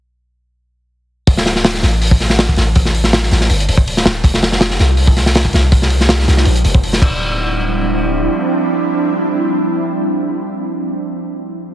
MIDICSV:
0, 0, Header, 1, 4, 480
1, 0, Start_track
1, 0, Key_signature, -1, "minor"
1, 0, Tempo, 370370
1, 1654, Time_signature, 4, 2, 24, 8
1, 15219, End_track
2, 0, Start_track
2, 0, Title_t, "Ambient pad"
2, 0, Program_c, 0, 92
2, 9095, Note_on_c, 0, 53, 97
2, 9097, Note_on_c, 0, 62, 92
2, 9098, Note_on_c, 0, 60, 87
2, 9098, Note_on_c, 0, 64, 103
2, 9099, Note_on_c, 0, 55, 88
2, 14160, Note_off_c, 0, 53, 0
2, 14160, Note_off_c, 0, 62, 0
2, 14161, Note_off_c, 0, 55, 0
2, 14161, Note_off_c, 0, 60, 0
2, 14161, Note_off_c, 0, 64, 0
2, 15219, End_track
3, 0, Start_track
3, 0, Title_t, "808-style bass"
3, 0, Program_c, 1, 38
3, 1651, Note_on_c, 1, 26, 97
3, 2354, Note_off_c, 1, 26, 0
3, 2375, Note_on_c, 1, 33, 92
3, 3316, Note_off_c, 1, 33, 0
3, 3335, Note_on_c, 1, 33, 87
3, 4276, Note_off_c, 1, 33, 0
3, 4295, Note_on_c, 1, 33, 96
3, 4512, Note_off_c, 1, 33, 0
3, 4536, Note_on_c, 1, 31, 87
3, 4752, Note_off_c, 1, 31, 0
3, 4776, Note_on_c, 1, 26, 91
3, 5237, Note_off_c, 1, 26, 0
3, 5257, Note_on_c, 1, 26, 90
3, 5473, Note_off_c, 1, 26, 0
3, 5494, Note_on_c, 1, 29, 100
3, 6196, Note_off_c, 1, 29, 0
3, 6217, Note_on_c, 1, 36, 98
3, 7157, Note_off_c, 1, 36, 0
3, 7175, Note_on_c, 1, 36, 82
3, 8116, Note_off_c, 1, 36, 0
3, 8138, Note_on_c, 1, 36, 97
3, 8353, Note_off_c, 1, 36, 0
3, 8376, Note_on_c, 1, 34, 82
3, 8592, Note_off_c, 1, 34, 0
3, 8616, Note_on_c, 1, 29, 94
3, 9077, Note_off_c, 1, 29, 0
3, 9096, Note_on_c, 1, 26, 102
3, 10723, Note_off_c, 1, 26, 0
3, 15219, End_track
4, 0, Start_track
4, 0, Title_t, "Drums"
4, 1650, Note_on_c, 9, 46, 90
4, 1651, Note_on_c, 9, 36, 95
4, 1780, Note_off_c, 9, 36, 0
4, 1780, Note_off_c, 9, 46, 0
4, 1780, Note_on_c, 9, 38, 52
4, 1880, Note_on_c, 9, 46, 62
4, 1890, Note_off_c, 9, 38, 0
4, 1890, Note_on_c, 9, 38, 50
4, 2009, Note_off_c, 9, 46, 0
4, 2017, Note_off_c, 9, 38, 0
4, 2017, Note_on_c, 9, 38, 40
4, 2130, Note_on_c, 9, 46, 96
4, 2133, Note_off_c, 9, 38, 0
4, 2133, Note_on_c, 9, 38, 126
4, 2256, Note_off_c, 9, 38, 0
4, 2256, Note_on_c, 9, 38, 55
4, 2260, Note_off_c, 9, 46, 0
4, 2366, Note_off_c, 9, 38, 0
4, 2366, Note_on_c, 9, 38, 49
4, 2374, Note_on_c, 9, 46, 62
4, 2495, Note_off_c, 9, 38, 0
4, 2504, Note_off_c, 9, 46, 0
4, 2612, Note_on_c, 9, 46, 76
4, 2739, Note_on_c, 9, 36, 94
4, 2742, Note_off_c, 9, 46, 0
4, 2855, Note_on_c, 9, 38, 39
4, 2857, Note_on_c, 9, 46, 70
4, 2869, Note_off_c, 9, 36, 0
4, 2977, Note_off_c, 9, 38, 0
4, 2977, Note_on_c, 9, 38, 48
4, 2987, Note_off_c, 9, 46, 0
4, 3093, Note_on_c, 9, 46, 89
4, 3094, Note_off_c, 9, 38, 0
4, 3094, Note_on_c, 9, 38, 116
4, 3223, Note_off_c, 9, 46, 0
4, 3224, Note_off_c, 9, 38, 0
4, 3225, Note_on_c, 9, 36, 80
4, 3322, Note_on_c, 9, 46, 64
4, 3335, Note_on_c, 9, 38, 52
4, 3354, Note_off_c, 9, 36, 0
4, 3452, Note_off_c, 9, 46, 0
4, 3464, Note_off_c, 9, 38, 0
4, 3569, Note_on_c, 9, 46, 86
4, 3576, Note_on_c, 9, 36, 108
4, 3699, Note_off_c, 9, 46, 0
4, 3699, Note_on_c, 9, 38, 40
4, 3705, Note_off_c, 9, 36, 0
4, 3816, Note_on_c, 9, 46, 62
4, 3829, Note_off_c, 9, 38, 0
4, 3938, Note_on_c, 9, 38, 41
4, 3946, Note_off_c, 9, 46, 0
4, 4058, Note_off_c, 9, 38, 0
4, 4058, Note_on_c, 9, 38, 115
4, 4058, Note_on_c, 9, 46, 82
4, 4186, Note_off_c, 9, 38, 0
4, 4186, Note_on_c, 9, 38, 40
4, 4188, Note_off_c, 9, 46, 0
4, 4293, Note_on_c, 9, 46, 64
4, 4302, Note_off_c, 9, 38, 0
4, 4302, Note_on_c, 9, 38, 41
4, 4415, Note_off_c, 9, 38, 0
4, 4415, Note_on_c, 9, 38, 38
4, 4423, Note_off_c, 9, 46, 0
4, 4531, Note_on_c, 9, 46, 86
4, 4545, Note_off_c, 9, 38, 0
4, 4660, Note_off_c, 9, 46, 0
4, 4667, Note_on_c, 9, 42, 51
4, 4777, Note_on_c, 9, 46, 75
4, 4796, Note_off_c, 9, 42, 0
4, 4892, Note_on_c, 9, 36, 89
4, 4906, Note_off_c, 9, 46, 0
4, 5022, Note_off_c, 9, 36, 0
4, 5022, Note_on_c, 9, 46, 86
4, 5147, Note_on_c, 9, 38, 47
4, 5152, Note_off_c, 9, 46, 0
4, 5256, Note_off_c, 9, 38, 0
4, 5256, Note_on_c, 9, 38, 126
4, 5260, Note_on_c, 9, 46, 70
4, 5385, Note_off_c, 9, 38, 0
4, 5389, Note_off_c, 9, 46, 0
4, 5493, Note_on_c, 9, 36, 119
4, 5498, Note_on_c, 9, 46, 89
4, 5622, Note_off_c, 9, 36, 0
4, 5622, Note_on_c, 9, 38, 50
4, 5627, Note_off_c, 9, 46, 0
4, 5734, Note_on_c, 9, 46, 75
4, 5739, Note_off_c, 9, 38, 0
4, 5739, Note_on_c, 9, 38, 59
4, 5861, Note_off_c, 9, 38, 0
4, 5861, Note_on_c, 9, 38, 43
4, 5863, Note_off_c, 9, 46, 0
4, 5970, Note_off_c, 9, 38, 0
4, 5970, Note_on_c, 9, 38, 124
4, 5970, Note_on_c, 9, 46, 93
4, 6098, Note_off_c, 9, 38, 0
4, 6098, Note_on_c, 9, 38, 59
4, 6100, Note_off_c, 9, 46, 0
4, 6212, Note_on_c, 9, 46, 72
4, 6214, Note_off_c, 9, 38, 0
4, 6214, Note_on_c, 9, 38, 47
4, 6341, Note_off_c, 9, 46, 0
4, 6344, Note_off_c, 9, 38, 0
4, 6442, Note_on_c, 9, 46, 76
4, 6572, Note_off_c, 9, 46, 0
4, 6576, Note_on_c, 9, 36, 102
4, 6695, Note_on_c, 9, 46, 73
4, 6697, Note_on_c, 9, 38, 38
4, 6706, Note_off_c, 9, 36, 0
4, 6820, Note_off_c, 9, 38, 0
4, 6820, Note_on_c, 9, 38, 50
4, 6824, Note_off_c, 9, 46, 0
4, 6930, Note_on_c, 9, 46, 98
4, 6940, Note_off_c, 9, 38, 0
4, 6940, Note_on_c, 9, 38, 121
4, 7059, Note_off_c, 9, 46, 0
4, 7061, Note_on_c, 9, 36, 92
4, 7070, Note_off_c, 9, 38, 0
4, 7165, Note_on_c, 9, 46, 64
4, 7184, Note_on_c, 9, 38, 60
4, 7191, Note_off_c, 9, 36, 0
4, 7295, Note_off_c, 9, 46, 0
4, 7313, Note_off_c, 9, 38, 0
4, 7410, Note_on_c, 9, 46, 88
4, 7414, Note_on_c, 9, 36, 111
4, 7540, Note_off_c, 9, 46, 0
4, 7543, Note_off_c, 9, 36, 0
4, 7544, Note_on_c, 9, 38, 42
4, 7650, Note_on_c, 9, 46, 77
4, 7674, Note_off_c, 9, 38, 0
4, 7779, Note_off_c, 9, 46, 0
4, 7784, Note_on_c, 9, 38, 41
4, 7891, Note_off_c, 9, 38, 0
4, 7891, Note_on_c, 9, 38, 127
4, 7896, Note_on_c, 9, 46, 84
4, 8020, Note_off_c, 9, 38, 0
4, 8022, Note_on_c, 9, 38, 45
4, 8025, Note_off_c, 9, 46, 0
4, 8137, Note_on_c, 9, 46, 65
4, 8138, Note_off_c, 9, 38, 0
4, 8138, Note_on_c, 9, 38, 42
4, 8258, Note_off_c, 9, 38, 0
4, 8258, Note_on_c, 9, 38, 38
4, 8267, Note_off_c, 9, 46, 0
4, 8363, Note_on_c, 9, 46, 83
4, 8388, Note_off_c, 9, 38, 0
4, 8492, Note_off_c, 9, 46, 0
4, 8494, Note_on_c, 9, 42, 43
4, 8611, Note_on_c, 9, 46, 70
4, 8623, Note_off_c, 9, 42, 0
4, 8741, Note_off_c, 9, 46, 0
4, 8742, Note_on_c, 9, 36, 97
4, 8858, Note_on_c, 9, 46, 83
4, 8872, Note_off_c, 9, 36, 0
4, 8981, Note_on_c, 9, 38, 46
4, 8987, Note_off_c, 9, 46, 0
4, 9095, Note_on_c, 9, 36, 105
4, 9101, Note_on_c, 9, 49, 78
4, 9111, Note_off_c, 9, 38, 0
4, 9224, Note_off_c, 9, 36, 0
4, 9231, Note_off_c, 9, 49, 0
4, 15219, End_track
0, 0, End_of_file